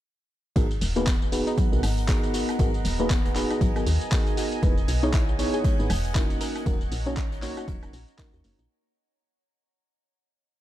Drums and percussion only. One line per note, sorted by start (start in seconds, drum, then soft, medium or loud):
0.56 kick loud
0.56 closed hi-hat medium
0.56 ride medium
0.56 tambourine soft
0.71 closed hi-hat soft
0.71 tambourine soft
0.81 open hi-hat loud
0.81 ride medium
0.81 tambourine medium
0.96 closed hi-hat medium
0.96 tambourine soft
1.07 kick loud
1.07 snare loud
1.07 clap loud
1.07 closed hi-hat medium
1.07 ride medium
1.07 tambourine soft
1.22 tambourine soft
1.32 open hi-hat loud
1.32 ride medium
1.32 tambourine medium
1.47 closed hi-hat medium
1.47 tambourine soft
1.58 kick loud
1.58 closed hi-hat medium
1.58 ride medium
1.58 tambourine soft
1.73 ride soft
1.73 tambourine soft
1.83 open hi-hat medium
1.83 open hi-hat loud
1.83 tambourine medium
1.83 high woodblock medium
1.98 closed hi-hat medium
1.98 tambourine soft
2.08 kick loud
2.08 snare loud
2.08 clap loud
2.08 closed hi-hat medium
2.08 ride medium
2.08 tambourine soft
2.23 closed hi-hat soft
2.23 ride soft
2.23 tambourine soft
2.33 snare soft
2.33 open hi-hat loud
2.33 ride medium
2.33 tambourine medium
2.49 snare soft
2.49 closed hi-hat medium
2.49 tambourine soft
2.49 high woodblock medium
2.59 kick loud
2.59 closed hi-hat medium
2.59 ride medium
2.59 tambourine soft
2.74 closed hi-hat soft
2.74 tambourine soft
2.85 open hi-hat loud
2.85 ride medium
2.85 tambourine medium
3.00 closed hi-hat medium
3.00 tambourine soft
3.10 kick loud
3.10 snare loud
3.10 clap loud
3.10 closed hi-hat medium
3.10 ride medium
3.10 tambourine soft
3.25 snare medium
3.25 tambourine soft
3.36 clap medium
3.36 open hi-hat loud
3.36 ride medium
3.36 tambourine medium
3.50 closed hi-hat medium
3.50 tambourine soft
3.50 high woodblock medium
3.61 kick loud
3.61 closed hi-hat medium
3.61 ride medium
3.61 tambourine soft
3.76 closed hi-hat soft
3.76 ride soft
3.76 tambourine soft
3.76 high woodblock medium
3.86 open hi-hat loud
3.86 ride medium
3.86 tambourine medium
4.01 closed hi-hat medium
4.01 tambourine soft
4.12 kick loud
4.12 snare loud
4.12 clap loud
4.12 open hi-hat medium
4.12 ride medium
4.12 tambourine soft
4.26 snare soft
4.26 closed hi-hat soft
4.26 tambourine soft
4.37 open hi-hat loud
4.37 ride medium
4.37 tambourine medium
4.52 closed hi-hat medium
4.52 tambourine soft
4.63 kick loud
4.63 closed hi-hat medium
4.63 ride medium
4.63 tambourine soft
4.78 closed hi-hat soft
4.78 tambourine soft
4.88 open hi-hat loud
4.88 ride medium
4.88 tambourine medium
5.03 closed hi-hat medium
5.03 tambourine soft
5.13 kick loud
5.13 snare loud
5.13 clap loud
5.13 closed hi-hat medium
5.13 ride medium
5.13 tambourine soft
5.29 tambourine soft
5.39 open hi-hat loud
5.39 ride medium
5.39 tambourine medium
5.54 closed hi-hat medium
5.54 tambourine soft
5.64 kick loud
5.64 closed hi-hat medium
5.64 ride loud
5.64 tambourine soft
5.79 ride soft
5.79 tambourine soft
5.90 open hi-hat medium
5.90 open hi-hat loud
5.90 tambourine medium
5.90 high woodblock medium
6.05 closed hi-hat medium
6.05 tambourine soft
6.15 kick loud
6.15 snare loud
6.15 clap loud
6.15 closed hi-hat medium
6.15 ride loud
6.15 tambourine soft
6.30 closed hi-hat soft
6.30 ride soft
6.30 tambourine soft
6.40 snare medium
6.40 open hi-hat loud
6.40 ride medium
6.40 tambourine medium
6.56 snare soft
6.56 closed hi-hat medium
6.56 tambourine soft
6.56 high woodblock medium
6.66 kick loud
6.66 closed hi-hat medium
6.66 ride medium
6.66 tambourine soft
6.81 closed hi-hat soft
6.81 tambourine soft
6.92 open hi-hat loud
6.92 ride medium
6.92 tambourine medium
7.06 closed hi-hat medium
7.06 tambourine soft
7.17 kick loud
7.17 snare loud
7.17 clap loud
7.17 closed hi-hat medium
7.17 ride medium
7.17 tambourine soft
7.32 snare medium
7.32 tambourine soft
7.42 clap medium
7.42 open hi-hat loud
7.42 ride medium
7.42 tambourine medium
7.57 closed hi-hat medium
7.57 tambourine soft
7.57 high woodblock medium
7.68 kick loud
7.68 closed hi-hat medium
7.68 ride medium
7.68 tambourine soft
7.83 closed hi-hat soft
7.83 ride soft
7.83 tambourine soft
7.83 high woodblock medium
7.93 open hi-hat loud
7.93 ride medium
7.93 tambourine medium
8.08 closed hi-hat soft
8.08 tambourine soft
8.18 kick loud
8.18 snare loud
8.18 clap loud
8.18 open hi-hat medium
8.18 ride loud
8.18 tambourine soft
8.33 snare soft
8.33 closed hi-hat soft
8.33 tambourine soft
8.44 open hi-hat loud
8.44 ride medium
8.44 tambourine medium
8.59 closed hi-hat medium
8.59 tambourine soft